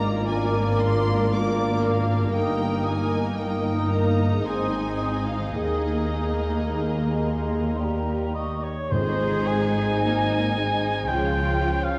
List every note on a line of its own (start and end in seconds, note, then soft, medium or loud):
0.00 2.30 G#1 medium
0.00 2.30 G#2 medium
0.00 0.31 A#3 medium
0.00 2.21 A#3 soft
0.00 4.40 A#3 medium
0.00 4.41 A#3 medium
0.00 2.34 D4 soft
0.00 0.28 D#4 medium
0.00 2.30 F4 medium
0.00 2.11 G#4 soft
0.00 0.31 A#4 medium
0.00 2.30 A#4 soft
0.00 4.41 A#4 medium
0.00 2.31 D5 medium
0.00 0.29 A#5 medium
0.00 0.28 D6 medium
0.28 1.31 A#3 soft
0.28 2.33 D4 medium
0.28 0.79 G#5 medium
0.28 1.31 D6 medium
0.32 1.31 A#4 medium
0.80 1.32 C6 medium
1.33 2.34 A#3 soft
1.33 2.33 A#4 medium
1.33 1.83 D6 medium
1.33 2.34 D6 medium
1.83 2.35 F5 medium
2.18 4.40 G2 soft
2.22 4.42 A#3 soft
2.26 4.35 D#4 soft
2.32 4.41 G1 medium
2.32 4.41 G2 medium
2.32 3.37 A#3 medium
2.32 5.49 D#4 medium
2.32 8.66 D#4 medium
2.32 3.36 A#4 medium
2.32 8.66 D#5 medium
2.32 2.85 G5 medium
2.36 3.10 D#6 medium
2.85 3.38 G#5 medium
3.37 4.47 A#3 medium
3.37 4.28 A#4 soft
3.37 3.90 G5 medium
3.37 4.44 D#6 medium
3.90 4.44 A#5 medium
4.28 5.51 G#2 soft
4.32 5.53 C4 soft
4.36 5.46 D#4 soft
4.41 5.55 G#2 soft
4.41 5.52 C4 soft
4.41 5.51 G#4 soft
4.41 7.75 G#4 soft
4.41 5.23 C5 soft
4.41 5.26 G#5 medium
4.45 5.55 G#1 soft
4.45 5.25 G#3 soft
4.45 5.51 C4 soft
4.45 5.53 D#6 medium
5.25 5.54 F5 medium
5.38 7.60 D#3 soft
5.43 7.65 A#3 soft
5.47 7.69 D#4 soft
5.52 8.70 D#2 soft
5.52 7.75 G#3 soft
5.52 8.66 A#3 soft
5.52 8.57 A#3 soft
5.52 7.82 G#4 soft
5.52 7.65 G#4 soft
5.52 7.75 A#4 soft
5.52 7.77 D#5 medium
5.57 6.56 D#6 soft
6.69 7.20 A#5 soft
7.25 7.80 C6 medium
7.62 8.88 D#3 soft
7.66 8.90 A#3 soft
7.71 10.03 D#4 soft
7.75 8.95 G4 soft
7.75 8.66 G4 soft
7.75 8.33 A#4 soft
7.79 8.55 G3 soft
7.79 8.57 G4 soft
7.79 8.36 A#5 soft
8.34 8.61 D#5 medium
8.34 8.65 D#5 medium
8.34 8.91 C#6 soft
8.64 8.92 C#5 soft
8.64 8.92 C#5 medium
8.91 11.05 G#1 medium
8.91 10.52 G#2 medium
8.91 11.14 G#2 medium
8.91 9.99 G#3 medium
8.91 11.05 C4 medium
8.91 11.05 D#4 medium
8.91 11.06 D#4 medium
8.91 9.99 G#4 medium
8.91 9.49 C5 medium
8.91 9.99 C5 medium
8.91 9.50 C5 medium
9.31 11.14 D#3 soft
9.47 11.09 G#5 medium
9.69 11.43 G#3 soft
10.01 10.57 A#3 medium
10.01 11.07 D#4 medium
10.01 10.73 D#4 soft
10.01 11.06 D#5 soft
10.39 11.14 C5 soft
10.57 11.10 G#3 soft
10.75 11.14 D#4 soft
11.06 11.99 C#2 medium
11.06 11.99 C#3 medium
11.06 11.99 F3 medium
11.06 11.99 C#4 medium
11.06 11.99 F4 soft
11.06 11.99 F4 medium
11.06 11.99 C#5 soft
11.06 11.86 G5 medium
11.06 11.88 G5 medium
11.10 11.99 F4 medium
11.44 11.99 G#3 soft
11.79 11.99 F4 soft
11.79 11.99 C#5 soft
11.84 11.99 F5 medium